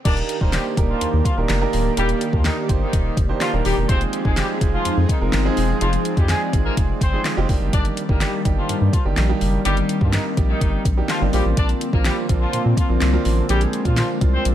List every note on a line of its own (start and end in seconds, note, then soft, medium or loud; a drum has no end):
0.05 0.22 D#1 loud
0.05 3.85 D#3 medium
0.05 0.35 A#3 medium
0.05 3.85 A#3 medium
0.05 0.15 D4 loud
0.05 0.35 D4 medium
0.05 0.35 D#4 medium
0.05 3.85 G4 loud
0.05 0.35 G4 medium
0.05 0.35 A#4 medium
0.05 0.15 D5 loud
0.05 3.85 D5 medium
0.05 kick loud
0.05 closed hi-hat loud
0.05 crash loud
0.17 closed hi-hat soft
0.29 closed hi-hat medium
0.41 0.58 D#1 loud
0.41 0.71 A#3 medium
0.41 0.51 A#3 medium
0.41 0.71 D4 medium
0.41 0.71 D#4 medium
0.41 0.71 G4 medium
0.41 0.51 A#4 medium
0.41 0.71 C5 medium
0.41 kick medium
0.52 0.63 G3 medium
0.52 0.63 G4 medium
0.52 snare loud
0.52 clap loud
0.52 closed hi-hat medium
0.77 0.94 D#1 medium
0.77 1.27 A#3 medium
0.77 1.27 D4 medium
0.77 1.27 D#4 medium
0.77 1.28 G4 medium
0.77 1.28 A#4 medium
0.77 kick loud
0.77 closed hi-hat medium
0.89 1.09 F3 medium
0.89 1.09 F4 medium
1.01 1.06 D#2 soft
1.01 closed hi-hat loud
1.13 1.21 D#2 loud
1.25 1.35 F3 medium
1.25 1.35 F4 medium
1.25 kick loud
1.25 closed hi-hat medium
1.37 1.45 D#1 loud
1.37 1.57 A#3 medium
1.37 1.57 D4 medium
1.37 1.57 D#4 medium
1.37 1.57 G4 medium
1.37 1.57 A#4 medium
1.48 1.66 F1 medium
1.48 snare loud
1.48 clap loud
1.48 closed hi-hat medium
1.61 1.91 A#3 medium
1.61 1.91 D4 medium
1.61 1.91 D#4 medium
1.61 1.91 G4 medium
1.61 1.91 A#4 loud
1.73 1.90 D1 medium
1.73 open hi-hat medium
1.97 2.14 D#1 loud
1.97 2.07 G3 loud
1.97 2.27 A#3 medium
1.97 2.27 D4 medium
1.97 2.27 D#4 medium
1.97 2.07 G4 loud
1.97 2.27 G4 medium
1.97 2.27 A#4 medium
1.97 closed hi-hat loud
2.09 closed hi-hat medium
2.21 closed hi-hat medium
2.33 2.50 D#2 medium
2.33 2.43 F3 medium
2.33 2.63 A#3 medium
2.33 2.63 D4 medium
2.33 2.63 D#4 medium
2.33 2.43 F4 medium
2.33 2.63 G4 medium
2.33 2.63 A#4 medium
2.33 kick medium
2.44 2.55 D#3 medium
2.44 2.55 D#4 medium
2.44 snare medium
2.44 clap loud
2.44 closed hi-hat medium
2.69 2.86 G1 loud
2.69 3.19 A#3 medium
2.69 3.19 D#4 medium
2.69 3.19 G4 medium
2.69 3.19 C5 medium
2.69 3.19 D5 medium
2.69 kick loud
2.69 closed hi-hat medium
2.81 3.15 D#3 medium
2.81 3.15 D#4 medium
2.93 3.10 D#1 loud
2.93 kick loud
2.93 closed hi-hat loud
3.17 3.34 F1 loud
3.17 kick loud
3.17 closed hi-hat medium
3.29 3.49 A#3 medium
3.29 3.49 D4 medium
3.29 3.49 D#4 medium
3.29 3.49 G4 medium
3.29 3.49 C5 medium
3.40 3.51 F3 medium
3.40 3.51 F4 medium
3.40 snare loud
3.40 clap loud
3.40 closed hi-hat medium
3.53 3.61 D#1 medium
3.53 3.83 A#3 medium
3.53 3.83 D4 medium
3.53 3.83 D#4 medium
3.53 3.83 G4 medium
3.53 3.83 A#4 medium
3.65 3.73 D#1 loud
3.65 3.75 G3 medium
3.65 3.75 G4 medium
3.65 open hi-hat medium
3.77 3.85 E1 medium
3.89 4.06 F1 loud
3.89 7.46 F3 medium
3.89 4.19 G#3 medium
3.89 4.19 C4 medium
3.89 3.99 C4 medium
3.89 7.46 C4 medium
3.89 4.19 D#4 medium
3.89 5.79 D#4 medium
3.89 4.19 F4 medium
3.89 7.46 G#4 medium
3.89 4.19 G#4 medium
3.89 3.99 C5 loud
3.89 kick loud
3.89 closed hi-hat loud
4.01 closed hi-hat medium
4.13 closed hi-hat medium
4.25 4.42 F1 medium
4.25 4.55 G#3 medium
4.25 4.35 G#3 medium
4.25 4.55 C4 medium
4.25 4.55 D#4 medium
4.25 4.55 F4 medium
4.25 4.35 G#4 medium
4.25 4.55 G#4 medium
4.25 kick medium
4.36 4.47 G3 medium
4.36 4.47 G4 medium
4.36 snare loud
4.36 clap loud
4.36 closed hi-hat medium
4.61 4.78 F1 loud
4.61 5.11 G#3 medium
4.61 5.11 C4 medium
4.61 5.11 D#4 medium
4.61 5.11 F4 medium
4.61 5.11 G#4 medium
4.61 kick loud
4.61 closed hi-hat medium
4.73 4.93 F3 medium
4.73 4.93 F4 medium
4.85 4.90 F2 medium
4.85 closed hi-hat loud
4.97 5.05 F2 loud
5.09 5.19 D#3 medium
5.09 5.19 D#4 medium
5.09 kick loud
5.09 closed hi-hat loud
5.21 5.29 F1 loud
5.21 5.41 G#3 medium
5.21 5.41 C4 medium
5.21 5.41 D#4 medium
5.21 5.41 F4 medium
5.21 5.41 A#4 medium
5.32 5.50 G1 loud
5.32 snare loud
5.32 clap loud
5.32 closed hi-hat medium
5.45 5.75 G#3 medium
5.45 5.75 C4 medium
5.45 5.75 D#4 medium
5.45 5.75 F4 medium
5.45 5.75 G#4 loud
5.57 5.74 E1 medium
5.57 open hi-hat medium
5.81 5.98 F1 loud
5.81 5.91 F3 medium
5.81 6.11 G#3 medium
5.81 6.11 C4 medium
5.81 6.11 D#4 medium
5.81 5.91 F4 loud
5.81 6.11 F4 medium
5.81 6.11 G#4 medium
5.81 9.38 D5 medium
5.81 closed hi-hat loud
5.93 closed hi-hat medium
6.05 closed hi-hat medium
6.17 6.34 F2 loud
6.17 6.27 G3 medium
6.17 6.47 G#3 medium
6.17 6.47 C4 medium
6.17 6.47 D#4 medium
6.17 6.47 F4 medium
6.17 6.27 G4 medium
6.17 6.47 G#4 medium
6.17 kick loud
6.17 closed hi-hat medium
6.28 6.39 G#3 medium
6.28 6.39 G#4 medium
6.28 snare loud
6.28 clap loud
6.28 closed hi-hat medium
6.53 6.70 G#1 medium
6.53 7.03 G#3 medium
6.53 7.03 C4 medium
6.53 7.03 D#4 medium
6.53 7.03 F4 medium
6.53 7.03 G#4 medium
6.53 kick loud
6.53 closed hi-hat medium
6.65 6.75 A#3 medium
6.65 6.75 A#4 medium
6.77 6.94 F1 loud
6.77 kick loud
6.77 closed hi-hat loud
7.01 7.18 G1 loud
7.01 7.21 C4 medium
7.01 7.21 C5 medium
7.01 kick loud
7.01 closed hi-hat medium
7.13 7.33 G#3 medium
7.13 7.33 C4 medium
7.13 7.33 D#4 medium
7.13 7.33 F4 medium
7.13 7.33 G#4 medium
7.24 snare medium
7.24 clap loud
7.24 closed hi-hat medium
7.37 7.45 F1 medium
7.37 7.49 G#3 medium
7.37 7.49 C4 medium
7.37 7.48 D#4 medium
7.37 7.49 F4 medium
7.37 7.48 G4 loud
7.49 7.57 G1 loud
7.49 11.29 D#3 medium
7.49 7.99 G3 medium
7.49 11.29 G3 medium
7.49 7.99 A#3 medium
7.49 7.99 D4 medium
7.49 7.99 D#4 medium
7.49 7.99 G4 loud
7.49 kick medium
7.49 open hi-hat medium
7.61 7.69 F#1 medium
7.73 7.90 G1 loud
7.73 7.83 D4 loud
7.73 7.83 D5 loud
7.73 kick loud
7.73 closed hi-hat loud
7.85 closed hi-hat medium
7.97 closed hi-hat medium
8.09 8.26 G1 loud
8.09 8.39 G3 medium
8.09 8.39 A#3 medium
8.09 8.19 A#3 medium
8.09 8.39 D4 medium
8.09 8.39 D#4 medium
8.09 8.39 G4 medium
8.09 8.19 A#4 medium
8.09 kick medium
8.20 8.31 G3 medium
8.20 8.31 G4 medium
8.20 snare medium
8.20 clap loud
8.20 closed hi-hat medium
8.45 8.62 G1 loud
8.45 8.95 G3 medium
8.45 8.95 A#3 medium
8.45 8.95 D4 medium
8.45 8.95 D#4 medium
8.45 8.95 G4 medium
8.45 kick medium
8.45 closed hi-hat medium
8.57 8.77 F3 medium
8.57 8.77 F4 medium
8.69 8.74 G2 soft
8.69 closed hi-hat loud
8.81 8.89 G2 loud
8.93 9.03 F3 medium
8.93 9.03 F4 medium
8.93 kick loud
8.93 closed hi-hat medium
9.05 9.13 G1 loud
9.05 9.25 G3 medium
9.05 9.25 A#3 medium
9.05 9.25 D4 medium
9.05 9.25 D#4 medium
9.05 9.25 G4 medium
9.16 9.34 A#1 loud
9.16 snare loud
9.16 clap loud
9.16 closed hi-hat medium
9.29 9.59 G3 medium
9.29 9.59 A#3 medium
9.29 9.59 D4 medium
9.29 9.59 D#4 medium
9.29 9.59 G4 loud
9.41 9.58 F#1 loud
9.41 14.55 C4 medium
9.41 open hi-hat medium
9.65 9.82 G1 loud
9.65 9.95 G3 medium
9.65 9.75 G3 loud
9.65 9.95 A#3 medium
9.65 9.95 D4 medium
9.65 9.95 D#4 medium
9.65 9.75 G4 loud
9.65 9.95 G4 medium
9.65 closed hi-hat loud
9.77 closed hi-hat medium
9.89 closed hi-hat medium
10.01 10.18 G2 loud
10.01 10.11 F3 medium
10.01 10.31 G3 medium
10.01 10.31 A#3 medium
10.01 10.31 D4 medium
10.01 10.31 D#4 medium
10.01 10.11 F4 medium
10.01 10.31 G4 medium
10.01 kick medium
10.12 10.23 D#3 medium
10.12 10.23 D#4 medium
10.12 snare loud
10.12 clap loud
10.12 closed hi-hat medium
10.37 10.54 A#1 loud
10.37 10.87 G3 medium
10.37 10.87 A#3 medium
10.37 10.88 D#4 medium
10.37 10.88 G4 medium
10.37 10.87 D5 medium
10.37 kick loud
10.37 closed hi-hat medium
10.49 10.83 D#3 medium
10.49 10.83 D#4 medium
10.61 10.78 G1 loud
10.61 kick loud
10.61 closed hi-hat loud
10.85 11.02 A#1 medium
10.85 kick loud
10.85 closed hi-hat loud
10.97 11.17 G3 medium
10.97 11.17 A#3 medium
10.97 11.17 D4 medium
10.97 11.17 D#4 medium
10.97 11.17 G4 medium
11.08 11.19 F3 medium
11.08 11.19 F4 medium
11.08 snare medium
11.08 clap loud
11.08 closed hi-hat medium
11.21 11.29 G1 loud
11.21 11.33 G3 medium
11.21 11.32 A#3 medium
11.21 11.32 D4 medium
11.21 11.33 D#4 medium
11.21 11.33 G4 medium
11.33 11.41 A#1 loud
11.33 14.55 D3 medium
11.33 11.83 F3 medium
11.33 11.43 G3 medium
11.33 11.83 A#3 medium
11.33 13.23 A#3 medium
11.33 11.83 C4 medium
11.33 11.83 D4 medium
11.33 11.84 F4 medium
11.33 11.43 G4 medium
11.33 open hi-hat medium
11.45 11.53 A1 medium
11.57 11.74 A#1 loud
11.57 11.67 D4 loud
11.57 11.67 D5 loud
11.57 kick loud
11.57 closed hi-hat loud
11.69 closed hi-hat medium
11.81 closed hi-hat medium
11.93 12.10 A#1 medium
11.93 12.23 F3 medium
11.93 12.03 A#3 medium
11.93 12.23 A#3 medium
11.93 12.23 C4 medium
11.93 12.23 D4 medium
11.93 12.23 F4 medium
11.93 12.03 A#4 medium
11.93 kick loud
12.04 12.15 G3 medium
12.04 12.15 G4 medium
12.04 snare loud
12.04 clap loud
12.04 closed hi-hat medium
12.29 12.46 A#1 loud
12.29 12.79 F3 medium
12.29 12.79 A#3 medium
12.29 12.79 C4 medium
12.29 12.79 D4 medium
12.29 12.80 F4 medium
12.29 kick loud
12.29 closed hi-hat medium
12.41 12.61 F3 medium
12.41 12.61 F4 medium
12.53 12.58 A#2 medium
12.53 closed hi-hat loud
12.65 12.74 A#2 medium
12.77 12.87 F3 medium
12.77 12.87 F4 medium
12.77 kick loud
12.77 closed hi-hat medium
12.89 12.98 A#1 medium
12.89 13.09 F3 medium
12.89 13.09 A#3 medium
12.89 13.09 C4 medium
12.89 13.09 D4 medium
12.89 13.09 F4 medium
13.00 13.18 C2 medium
13.00 snare medium
13.00 clap loud
13.00 closed hi-hat medium
13.13 13.43 F3 medium
13.13 13.43 A#3 medium
13.13 13.43 C4 medium
13.13 13.43 D4 medium
13.13 13.43 F4 loud
13.25 13.42 A1 loud
13.25 14.55 G#3 medium
13.25 open hi-hat medium
13.49 13.66 A#1 loud
13.49 13.79 F3 medium
13.49 13.59 G3 medium
13.49 13.79 A#3 medium
13.49 13.79 C4 medium
13.49 13.79 D4 medium
13.49 13.59 G4 loud
13.49 13.79 G#4 medium
13.49 closed hi-hat loud
13.61 closed hi-hat medium
13.73 closed hi-hat medium
13.85 14.02 A#2 loud
13.85 14.15 F3 medium
13.85 13.95 F3 medium
13.85 14.15 A#3 medium
13.85 14.15 C4 medium
13.85 14.15 D4 medium
13.85 13.95 F4 medium
13.85 14.15 F4 medium
13.85 kick medium
13.85 closed hi-hat medium
13.96 14.07 F3 medium
13.96 14.07 F4 medium
13.96 snare loud
13.96 clap loud
13.96 closed hi-hat medium
14.21 14.38 C2 medium
14.21 14.55 F3 medium
14.21 14.55 A#3 medium
14.21 14.55 C4 medium
14.21 14.55 D4 medium
14.21 14.55 F4 medium
14.21 kick loud
14.21 closed hi-hat medium
14.33 14.43 C4 medium
14.33 14.43 C5 medium
14.45 14.55 A#1 medium
14.45 closed hi-hat loud